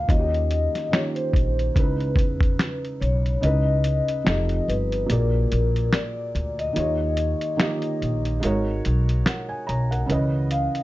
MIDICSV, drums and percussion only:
0, 0, Header, 1, 2, 480
1, 0, Start_track
1, 0, Tempo, 833333
1, 51, Time_signature, 4, 2, 24, 8
1, 6238, End_track
2, 0, Start_track
2, 0, Title_t, "Drums"
2, 50, Note_on_c, 9, 36, 100
2, 56, Note_on_c, 9, 42, 70
2, 108, Note_off_c, 9, 36, 0
2, 113, Note_off_c, 9, 42, 0
2, 198, Note_on_c, 9, 42, 33
2, 256, Note_off_c, 9, 42, 0
2, 292, Note_on_c, 9, 42, 65
2, 349, Note_off_c, 9, 42, 0
2, 433, Note_on_c, 9, 38, 32
2, 433, Note_on_c, 9, 42, 51
2, 491, Note_off_c, 9, 38, 0
2, 491, Note_off_c, 9, 42, 0
2, 537, Note_on_c, 9, 38, 105
2, 538, Note_on_c, 9, 42, 65
2, 542, Note_on_c, 9, 26, 81
2, 595, Note_off_c, 9, 38, 0
2, 595, Note_off_c, 9, 42, 0
2, 600, Note_off_c, 9, 26, 0
2, 669, Note_on_c, 9, 42, 36
2, 726, Note_off_c, 9, 42, 0
2, 769, Note_on_c, 9, 36, 85
2, 784, Note_on_c, 9, 42, 56
2, 826, Note_off_c, 9, 36, 0
2, 842, Note_off_c, 9, 42, 0
2, 917, Note_on_c, 9, 42, 47
2, 974, Note_off_c, 9, 42, 0
2, 1013, Note_on_c, 9, 36, 89
2, 1017, Note_on_c, 9, 42, 83
2, 1070, Note_off_c, 9, 36, 0
2, 1075, Note_off_c, 9, 42, 0
2, 1154, Note_on_c, 9, 42, 32
2, 1212, Note_off_c, 9, 42, 0
2, 1242, Note_on_c, 9, 36, 79
2, 1259, Note_on_c, 9, 42, 73
2, 1300, Note_off_c, 9, 36, 0
2, 1317, Note_off_c, 9, 42, 0
2, 1385, Note_on_c, 9, 36, 82
2, 1399, Note_on_c, 9, 42, 39
2, 1443, Note_off_c, 9, 36, 0
2, 1456, Note_off_c, 9, 42, 0
2, 1494, Note_on_c, 9, 38, 98
2, 1499, Note_on_c, 9, 26, 78
2, 1502, Note_on_c, 9, 42, 81
2, 1552, Note_off_c, 9, 38, 0
2, 1557, Note_off_c, 9, 26, 0
2, 1559, Note_off_c, 9, 42, 0
2, 1639, Note_on_c, 9, 42, 33
2, 1697, Note_off_c, 9, 42, 0
2, 1741, Note_on_c, 9, 42, 53
2, 1799, Note_off_c, 9, 42, 0
2, 1877, Note_on_c, 9, 42, 43
2, 1934, Note_off_c, 9, 42, 0
2, 1976, Note_on_c, 9, 42, 70
2, 2034, Note_off_c, 9, 42, 0
2, 2212, Note_on_c, 9, 42, 73
2, 2270, Note_off_c, 9, 42, 0
2, 2352, Note_on_c, 9, 42, 58
2, 2410, Note_off_c, 9, 42, 0
2, 2457, Note_on_c, 9, 38, 121
2, 2458, Note_on_c, 9, 42, 76
2, 2462, Note_on_c, 9, 26, 94
2, 2515, Note_off_c, 9, 38, 0
2, 2515, Note_off_c, 9, 42, 0
2, 2520, Note_off_c, 9, 26, 0
2, 2587, Note_on_c, 9, 42, 39
2, 2645, Note_off_c, 9, 42, 0
2, 2705, Note_on_c, 9, 42, 60
2, 2762, Note_off_c, 9, 42, 0
2, 2836, Note_on_c, 9, 42, 56
2, 2893, Note_off_c, 9, 42, 0
2, 2936, Note_on_c, 9, 42, 85
2, 2993, Note_off_c, 9, 42, 0
2, 3178, Note_on_c, 9, 42, 76
2, 3235, Note_off_c, 9, 42, 0
2, 3318, Note_on_c, 9, 42, 43
2, 3376, Note_off_c, 9, 42, 0
2, 3413, Note_on_c, 9, 38, 91
2, 3419, Note_on_c, 9, 26, 80
2, 3421, Note_on_c, 9, 42, 77
2, 3471, Note_off_c, 9, 38, 0
2, 3476, Note_off_c, 9, 26, 0
2, 3478, Note_off_c, 9, 42, 0
2, 3660, Note_on_c, 9, 42, 54
2, 3718, Note_off_c, 9, 42, 0
2, 3796, Note_on_c, 9, 42, 45
2, 3854, Note_off_c, 9, 42, 0
2, 3894, Note_on_c, 9, 42, 82
2, 3952, Note_off_c, 9, 42, 0
2, 4129, Note_on_c, 9, 42, 67
2, 4187, Note_off_c, 9, 42, 0
2, 4270, Note_on_c, 9, 42, 54
2, 4327, Note_off_c, 9, 42, 0
2, 4375, Note_on_c, 9, 38, 115
2, 4376, Note_on_c, 9, 42, 72
2, 4380, Note_on_c, 9, 26, 92
2, 4433, Note_off_c, 9, 38, 0
2, 4433, Note_off_c, 9, 42, 0
2, 4438, Note_off_c, 9, 26, 0
2, 4504, Note_on_c, 9, 42, 38
2, 4562, Note_off_c, 9, 42, 0
2, 4621, Note_on_c, 9, 42, 60
2, 4678, Note_off_c, 9, 42, 0
2, 4753, Note_on_c, 9, 42, 51
2, 4811, Note_off_c, 9, 42, 0
2, 4855, Note_on_c, 9, 42, 91
2, 4912, Note_off_c, 9, 42, 0
2, 5097, Note_on_c, 9, 42, 73
2, 5155, Note_off_c, 9, 42, 0
2, 5236, Note_on_c, 9, 42, 47
2, 5293, Note_off_c, 9, 42, 0
2, 5334, Note_on_c, 9, 38, 93
2, 5339, Note_on_c, 9, 26, 84
2, 5341, Note_on_c, 9, 42, 88
2, 5391, Note_off_c, 9, 38, 0
2, 5397, Note_off_c, 9, 26, 0
2, 5399, Note_off_c, 9, 42, 0
2, 5581, Note_on_c, 9, 42, 58
2, 5639, Note_off_c, 9, 42, 0
2, 5715, Note_on_c, 9, 42, 43
2, 5773, Note_off_c, 9, 42, 0
2, 5815, Note_on_c, 9, 42, 78
2, 5873, Note_off_c, 9, 42, 0
2, 6052, Note_on_c, 9, 42, 70
2, 6110, Note_off_c, 9, 42, 0
2, 6191, Note_on_c, 9, 42, 48
2, 6238, Note_off_c, 9, 42, 0
2, 6238, End_track
0, 0, End_of_file